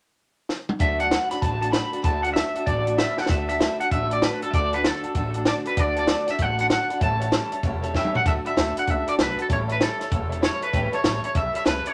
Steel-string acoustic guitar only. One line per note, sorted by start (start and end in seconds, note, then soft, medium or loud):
0.79 0.99 D3 medium
0.79 1.00 A3 medium
0.79 1.00 D4 medium
0.79 1.00 F#4 medium
0.79 0.98 A4 medium
0.99 1.10 D4 soft
0.99 1.11 F#4 medium
0.99 1.11 A4 medium
1.10 1.30 A3 medium
1.10 1.28 A4 medium
1.29 1.42 D4 soft
1.29 1.42 F#4 soft
1.29 1.42 A4 medium
1.42 1.62 D3 medium
1.42 1.62 A3 medium
1.42 1.61 D4 medium
1.42 1.60 F#4 medium
1.42 1.59 A4 medium
1.60 1.71 D4 soft
1.60 1.72 F#4 medium
1.60 1.72 A4 medium
1.71 1.92 A3 medium
1.71 1.92 D4 medium
1.71 1.92 F#4 medium
1.71 1.91 A4 medium
1.92 2.02 D4 soft
1.92 2.02 F#4 soft
1.92 2.03 A4 medium
2.02 2.23 D3 medium
2.02 2.23 A3 medium
2.02 2.24 D4 medium
2.02 2.23 F#4 medium
2.02 2.21 A4 medium
2.23 2.35 D4 soft
2.23 2.36 F#4 soft
2.23 2.35 A4 medium
2.36 2.55 A3 medium
2.36 2.55 D4 medium
2.36 2.55 F#4 medium
2.36 2.54 A4 medium
2.55 2.66 D4 soft
2.55 2.66 F#4 medium
2.55 2.67 A4 medium
2.66 2.86 D3 medium
2.66 2.86 A3 medium
2.66 2.86 D4 medium
2.66 2.86 F#4 medium
2.66 2.85 A4 medium
2.86 2.97 D4 soft
2.86 2.98 F#4 medium
2.86 2.98 A4 medium
2.97 3.17 A3 medium
2.97 3.17 D4 medium
2.97 3.18 F#4 medium
2.97 3.17 A4 medium
3.18 3.28 D4 soft
3.18 3.29 F#4 medium
3.18 3.29 A4 medium
3.28 3.48 D3 medium
3.28 3.49 A3 medium
3.28 3.49 D4 medium
3.28 3.48 F#4 medium
3.28 3.47 A4 medium
3.48 3.59 D4 soft
3.48 3.59 F#4 soft
3.48 3.60 A4 medium
3.59 3.79 D3 medium
3.59 3.79 A3 medium
3.59 3.80 D4 medium
3.59 3.79 F#4 medium
3.59 3.77 A4 medium
3.79 3.91 D4 soft
3.79 3.91 F#4 soft
3.79 3.91 A4 medium
3.91 4.11 A3 medium
3.91 4.11 D4 medium
3.91 4.10 F#4 medium
3.91 4.09 A4 medium
4.10 4.21 D4 soft
4.10 4.22 F#4 soft
4.10 4.22 A4 soft
4.21 4.41 D3 medium
4.21 4.42 A3 medium
4.21 4.42 D4 medium
4.21 4.41 F#4 medium
4.21 4.40 A4 medium
4.41 4.53 D4 soft
4.41 4.53 F#4 soft
4.41 4.53 A4 medium
4.54 4.73 D3 medium
4.54 4.73 A3 medium
4.54 4.73 D4 medium
4.54 4.73 F#4 medium
4.54 4.71 A4 medium
4.73 4.85 D4 soft
4.73 4.85 F#4 soft
4.73 4.84 A4 medium
4.85 5.04 D3 medium
4.85 5.05 A3 medium
4.85 5.05 D4 medium
4.85 5.04 F#4 medium
4.85 5.03 A4 medium
5.04 5.15 D4 soft
5.04 5.16 F#4 medium
5.04 5.15 A4 medium
5.15 5.35 A3 medium
5.15 5.35 D4 medium
5.15 5.35 F#4 medium
5.15 5.33 A4 medium
5.34 5.45 D4 soft
5.34 5.46 F#4 medium
5.34 5.46 A4 medium
5.45 5.65 D3 medium
5.45 5.66 A3 medium
5.45 5.66 D4 medium
5.45 5.65 F#4 medium
5.45 5.64 A4 medium
5.65 5.76 D4 soft
5.65 5.77 F#4 medium
5.65 5.77 A4 medium
5.77 5.97 D3 medium
5.77 5.97 A3 medium
5.77 5.97 D4 medium
5.77 5.96 F#4 medium
5.77 5.95 A4 medium
5.96 6.07 D4 soft
5.96 6.07 F#4 medium
5.96 6.07 A4 medium
6.07 6.27 D3 medium
6.07 6.27 A3 medium
6.07 6.28 D4 medium
6.07 6.27 F#4 medium
6.07 6.26 A4 medium
6.27 6.38 D4 soft
6.27 6.38 F#4 soft
6.27 6.39 A4 medium
6.38 6.59 A3 medium
6.38 6.59 D4 medium
6.38 6.58 F#4 medium
6.38 6.57 A4 medium
6.58 6.68 D4 soft
6.58 6.69 F#4 soft
6.58 6.69 A4 medium
6.69 6.89 D3 medium
6.69 6.90 A3 medium
6.69 6.90 D4 medium
6.69 6.89 F#4 medium
6.69 6.88 A4 medium
6.89 7.02 D4 soft
6.89 7.01 F#4 soft
6.89 7.01 A4 medium
7.00 7.20 A2 medium
7.00 7.21 E3 medium
7.00 7.21 G3 medium
7.00 7.20 C#4 medium
7.00 7.19 G4 medium
7.00 7.19 A4 medium
7.20 7.31 G3 soft
7.20 7.31 C#4 medium
7.20 7.32 G4 soft
7.20 7.32 A4 medium
7.31 7.51 A2 medium
7.31 7.52 E3 medium
7.31 7.52 G3 medium
7.31 7.52 C#4 medium
7.31 7.52 G4 medium
7.31 7.50 A4 medium
7.52 7.63 G3 soft
7.52 7.64 C#4 medium
7.52 7.64 G4 medium
7.52 7.63 A4 medium
7.64 7.83 G3 medium
7.64 7.83 C#4 medium
7.64 7.82 G4 medium
7.64 7.81 A4 medium
7.82 7.95 G3 soft
7.82 7.95 C#4 medium
7.82 7.95 G4 medium
7.82 7.94 A4 medium
7.95 8.15 A2 medium
7.95 8.14 E3 medium
7.95 8.15 G3 medium
7.95 8.15 C#4 medium
7.95 8.14 G4 medium
7.95 8.13 A4 medium
8.14 8.26 G3 soft
8.14 8.27 C#4 soft
8.14 8.26 G4 medium
8.14 8.26 A4 soft
8.27 8.46 D3 medium
8.27 8.46 A3 medium
8.27 8.46 D4 medium
8.27 8.45 F#4 medium
8.27 8.43 A4 medium
8.45 8.56 D4 soft
8.45 8.56 F#4 soft
8.45 8.56 A4 medium
8.56 8.76 D3 medium
8.56 8.76 A3 medium
8.56 8.76 D4 medium
8.56 8.76 F#4 medium
8.56 8.75 A4 medium
8.76 8.87 D4 soft
8.76 8.87 F#4 medium
8.76 8.87 A4 medium
8.87 9.07 A3 medium
8.87 9.07 D4 medium
8.87 9.07 F#4 medium
8.87 9.06 A4 medium
9.07 9.18 D4 soft
9.07 9.19 F#4 soft
9.07 9.18 A4 medium
9.19 9.38 D3 medium
9.19 9.38 A3 medium
9.19 9.38 D4 medium
9.19 9.38 F#4 medium
9.19 9.36 A4 medium
9.37 9.51 D4 soft
9.37 9.50 F#4 medium
9.37 9.49 A4 medium
9.49 9.69 A2 medium
9.49 9.69 E3 medium
9.49 9.69 G3 medium
9.49 9.69 C#4 medium
9.49 9.69 G4 medium
9.49 9.68 A4 medium
9.69 9.80 G3 soft
9.69 9.80 C#4 soft
9.69 9.80 G4 medium
9.69 9.80 A4 medium
9.80 10.00 A2 medium
9.80 10.00 E3 medium
9.80 10.00 G3 medium
9.80 10.00 C#4 medium
9.80 9.99 G4 medium
9.80 9.99 A4 medium
10.00 10.10 G3 soft
10.00 10.11 C#4 soft
10.00 10.11 G4 medium
10.00 10.12 A4 medium
10.11 10.31 G3 medium
10.11 10.31 C#4 medium
10.11 10.32 G4 medium
10.11 10.31 A4 medium
10.32 10.42 G3 medium
10.32 10.42 C#4 medium
10.32 10.43 G4 medium
10.32 10.43 A4 medium
10.42 10.62 A2 medium
10.42 10.62 E3 medium
10.42 10.62 G3 medium
10.42 10.62 C#4 medium
10.42 10.61 G4 medium
10.42 10.60 A4 medium
10.61 10.72 G3 soft
10.61 10.72 C#4 medium
10.61 10.73 G4 medium
10.61 10.73 A4 medium
10.72 10.92 A2 medium
10.72 10.93 E3 medium
10.72 10.93 G3 medium
10.72 10.92 C#4 medium
10.72 10.92 G4 medium
10.72 10.91 A4 medium
10.92 11.03 G3 soft
10.92 11.03 C#4 medium
10.92 11.04 G4 medium
10.92 11.04 A4 medium
11.03 11.23 A2 medium
11.03 11.24 E3 medium
11.03 11.24 G3 medium
11.03 11.24 C#4 medium
11.03 11.22 G4 medium
11.03 11.22 A4 medium
11.23 11.33 G3 soft
11.23 11.34 C#4 soft
11.23 11.35 G4 soft
11.23 11.35 A4 medium
11.34 11.54 G3 medium
11.34 11.54 C#4 medium
11.34 11.53 G4 medium
11.34 11.52 A4 medium
11.53 11.64 G3 soft
11.53 11.64 C#4 soft
11.53 11.65 G4 medium
11.53 11.65 A4 medium
11.65 11.85 A2 medium
11.65 11.85 E3 medium
11.65 11.85 G3 medium
11.65 11.85 C#4 medium
11.65 11.84 G4 medium
11.65 11.82 A4 medium
11.83 11.94 G3 soft
11.83 11.94 C#4 medium
11.83 11.94 G4 medium
11.83 11.94 A4 soft